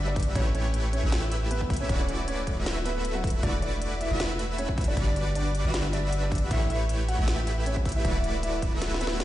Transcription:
Already playing: G1 G3 D4 F#4 B4 E5, downlifter
0.07 D4 D5
0.16 kick, closed hi-hat
0.20 closed hi-hat
0.23 closed hi-hat
0.35 A1 A3 C#4 E4 G4 B4 C#5, kick, closed hi-hat
0.55 C#4 C#5, closed hi-hat
0.74 closed hi-hat
0.93 C#4 C#5, closed hi-hat
1.03 A1 A3 E4 G4 B4 E5
1.12 snare, closed hi-hat
1.32 closed hi-hat
1.51 B3 B4, closed hi-hat
1.61 kick
1.70 kick, closed hi-hat
1.74 closed hi-hat
1.77 C#4 C#5, closed hi-hat
1.89 D1 A3 E4 F#4 B4 D5, kick, closed hi-hat
2.00 C#4 C#5
2.09 closed hi-hat
2.28 C#4 C#5, closed hi-hat
2.47 kick, closed hi-hat
2.57 D1 A3 E4 F#4 B4 E5
2.66 snare, closed hi-hat
2.85 B3 B4, closed hi-hat
3.05 closed hi-hat
3.15 F#3 F#4
3.24 kick, closed hi-hat
3.27 closed hi-hat
3.30 closed hi-hat
3.43 E1 A3 D4 E4 F#4 B4 D5, kick, closed hi-hat
3.62 D4 D5, closed hi-hat
3.82 closed hi-hat
4.01 E4 E5, closed hi-hat
4.11 E1 A3 E4 F#4 B4 E5
4.20 snare, closed hi-hat
4.39 closed hi-hat
4.58 C#4 C#5, closed hi-hat
4.69 kick
4.78 kick, closed hi-hat
4.81 closed hi-hat
4.84 D4 D5, closed hi-hat
4.97 G1 G3 D4 F#4 B4 D5, kick, closed hi-hat
5.07 D4 D5
5.16 closed hi-hat
5.35 D4 D5, closed hi-hat
5.55 closed hi-hat
5.65 G1 G3 D4 F#4 B4 E5
5.74 snare, closed hi-hat
5.93 D4 D5, closed hi-hat
6.12 closed hi-hat
6.23 D4 D5
6.32 kick, closed hi-hat
6.35 closed hi-hat
6.38 closed hi-hat
6.51 A1 A3 E4 G4 B4 C#5 E5, kick, closed hi-hat
6.70 E4 E5, closed hi-hat
6.89 closed hi-hat
7.09 F#4 F#5, closed hi-hat
7.19 A1 A3 E4 G4 B4 E5
7.28 snare, closed hi-hat
7.47 closed hi-hat
7.66 C#4 C#5, closed hi-hat
7.77 kick
7.85 kick, closed hi-hat
7.89 closed hi-hat
7.92 E4 E5, closed hi-hat
8.05 D1 A3 E4 F#4 B4 D5, kick, closed hi-hat
8.15 E4 E5
8.24 closed hi-hat
8.43 E4 E5, closed hi-hat
8.62 kick, closed hi-hat
8.73 D1 A3 E4 F#4 B4 E5
8.82 snare, closed hi-hat, swell
8.94 snare
9.01 B3 B4, closed hi-hat
9.07 snare
9.20 snare, closed hi-hat

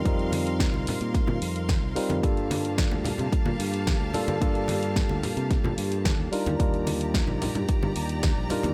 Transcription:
Already playing: A#4 F5 C6
0.04 F2 G3 C4 D#4 F4 A#4, kick, closed hi-hat
0.19 closed hi-hat
0.32 open hi-hat, high conga
0.47 closed hi-hat
0.60 kick, snare, closed hi-hat
0.74 C2, high conga
0.87 muted fingered electric bass stroke, open hi-hat, low conga
1.01 A#2, closed hi-hat
1.15 kick, snare, closed hi-hat
1.27 A#2, high conga, low conga
1.42 F2, open hi-hat
1.56 closed hi-hat
1.69 kick, snare, closed hi-hat, high conga
1.83 C2
1.95 G3 C4 D#4 F4 A#4, muted fingered electric bass stroke, open hi-hat
2.10 F2, closed hi-hat, high conga
2.22 G2 G3 A#3 D4 F4 G4 A4 F5 A5, kick, closed hi-hat
2.37 closed hi-hat
2.51 open hi-hat, high conga
2.65 closed hi-hat
2.78 kick, snare, closed hi-hat
2.91 D2, high conga
3.04 open hi-hat, low conga
3.18 C3, closed hi-hat, low conga
3.33 kick, closed hi-hat
3.46 A#2, high conga
3.60 G2, open hi-hat
3.74 closed hi-hat
3.87 kick, snare, closed hi-hat, high conga
4.01 D2
4.14 G3 A#3 D4 F4 A4, muted fingered electric bass stroke, open hi-hat, low conga
4.28 G2, closed hi-hat, high conga
4.41 G2 G3 A#3 D4 F4 A4, kick, closed hi-hat
4.55 closed hi-hat
4.68 open hi-hat, high conga
4.83 closed hi-hat
4.96 kick, snare, closed hi-hat
5.09 D2, high conga
5.23 muted fingered electric bass stroke, open hi-hat, low conga
5.37 C3, closed hi-hat
5.51 kick, snare, closed hi-hat
5.64 A#2, high conga, low conga
5.78 G2, open hi-hat
5.92 closed hi-hat
6.05 kick, snare, closed hi-hat, high conga
6.19 D#2
6.32 G3 D4 D#4 F4 G4 A#4 D5 A#5, muted fingered electric bass stroke, open hi-hat
6.46 D#2, closed hi-hat, high conga
6.59 D#2 G3 D4 D#4 F4 A#4, kick, closed hi-hat
6.74 closed hi-hat
6.87 open hi-hat, high conga
7.01 closed hi-hat
7.14 kick, snare, closed hi-hat
7.28 A#1, high conga
7.42 open hi-hat, low conga
7.55 G2, closed hi-hat, low conga
7.69 muted fingered electric bass stroke, kick, closed hi-hat
7.83 G2, high conga
7.96 D#2, open hi-hat
8.09 closed hi-hat
8.23 kick, snare, closed hi-hat, high conga
8.37 A#1
8.50 G3 D4 D#4 F4 A#4, muted fingered electric bass stroke, open hi-hat, low conga
8.63 D#2, closed hi-hat, high conga

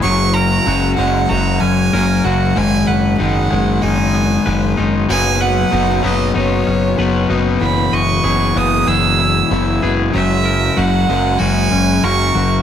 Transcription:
Already playing: G#3
0.03 F#1 F#2 C#3 F#3 C#4 F#5 C#6
0.34 A#4 A#5
0.66 F#1 F#2 C#3 F#3 F#4
0.97 F#1 F#2 C#3 F#3 G#3 F#5
1.29 F#1 F#2 C#3 F#3 F#4 A#5
1.60 F#1 C#4 G#5
1.93 F#1 F#2 C#3 F#3 A#4
2.25 F#1 F#2 C#3 F#3 F#4 F#5
2.56 F#1 G#2 D#3 G#3 B3 G#5
2.87 F#1 B4 F#5
3.18 F#1 G#2 D#3 G#3 D#4 F#5
3.51 F#1 G#2 D#3 G#3
3.82 F#1 G#2 D#3 G#3 D#4 G#5
4.14 B3
4.46 F#1 G#2 D#3 G#3 B4
4.77 F#1 G#2 D#3 G#3 D#4
5.08 F#1 B2 F#3 B3 C#4 B4 G#5
5.41 B4 F#5
5.71 F#1 B2 F#3 B3 D#4
6.03 F#1 B2 F#3 B3 D#5
6.34 F#1 B2 F#3 B3 D#4
6.38 C#5
6.67 F#1 C#4
6.98 F#1 B2 F#3 B3 B4
7.29 F#1 B2 F#3 B3 D#4
7.61 F#1 E2 B2 E3 F#3 G#3 E4 B5
7.92 F#1 D#5 C#6
8.24 F#1 E2 B2 E3 G#4
8.56 F#1 E2 B2 E3 B3 D#6
8.87 F#1 E2 B2 E3 G#4 E6
9.19 E4
9.50 F#1 E2 B2 E3
9.81 F#1 E2 B2 E3 G#4
10.12 F#1 F#2 C#3 F#3 C#4 A#4 E5 F#5
10.45 A#4
10.77 F#1 F#2 C#3 F#3 F#4 F#5
11.09 F#1 F#2 C#3 F#3 G#3
11.39 F#1 F#2 C#3 F#3 F#4 G#5
11.72 F#1 C#4
12.03 F#1 F#2 C#3 F#3 A#4 C#6
12.35 F#1 F#2 C#3 F#3 F#4

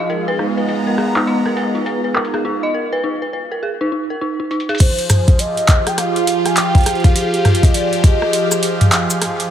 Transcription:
Already playing: D#4 F4 G#4 F5
0.09 G#3 A#4, closed hi-hat
0.27 B3 B4, closed hi-hat
0.36 D#4 A#5, cross-stick
0.57 B4, closed hi-hat
0.69 B4, closed hi-hat
0.87 A#4, closed hi-hat
0.98 G#4, cross-stick, closed hi-hat
1.16 D#4, clap, closed hi-hat
1.27 D#5, closed hi-hat
1.46 A#4, cross-stick, closed hi-hat
1.57 B4, closed hi-hat
1.75 D#4, closed hi-hat
1.86 B4, closed hi-hat
2.04 B4
2.15 A#4, clap
2.25 closed hi-hat
2.34 G#4, cross-stick, closed hi-hat
2.45 D#4
2.63 D#5
2.74 A#4
2.92 B4
3.04 D#4
3.22 B4
3.33 B4
3.52 A#4
3.63 G#4
3.81 D#4
3.92 D#4
4.10 A#4
4.21 D#4
4.40 D#4
4.51 D#4, closed hi-hat
4.60 closed hi-hat
4.69 G#4, closed hi-hat
4.75 closed hi-hat
4.80 F3 C5, kick, closed hi-hat, crash
4.99 G#4, closed hi-hat
5.05 F4
5.10 cross-stick, closed hi-hat, mid tom, cabasa
5.28 kick, closed hi-hat
5.34 G4
5.39 D#5, closed hi-hat
5.57 closed hi-hat
5.68 kick, clap, closed hi-hat
5.87 G5, cross-stick, closed hi-hat
5.98 F5, cross-stick, closed hi-hat
6.16 closed hi-hat
6.20 F5
6.27 closed hi-hat
6.45 G#5, cross-stick, closed hi-hat
6.57 G5, clap, closed hi-hat
6.75 kick, closed hi-hat
6.78 closed hi-hat
6.81 closed hi-hat
6.83 cross-stick, closed hi-hat
6.86 closed hi-hat
6.91 closed hi-hat
6.95 closed hi-hat
7.00 closed hi-hat
7.04 F5, kick, closed hi-hat
7.16 closed hi-hat
7.34 closed hi-hat
7.45 cross-stick, closed hi-hat, mid tom
7.55 closed hi-hat
7.63 D#5, kick, closed hi-hat
7.74 D5, closed hi-hat
7.93 closed hi-hat
8.04 D#5, kick, closed hi-hat
8.22 cross-stick
8.33 closed hi-hat
8.52 cross-stick, closed hi-hat, cabasa
8.63 closed hi-hat
8.81 closed hi-hat, mid tom
8.92 clap, closed hi-hat
9.10 closed hi-hat, cabasa
9.22 cross-stick, closed hi-hat
9.40 closed hi-hat

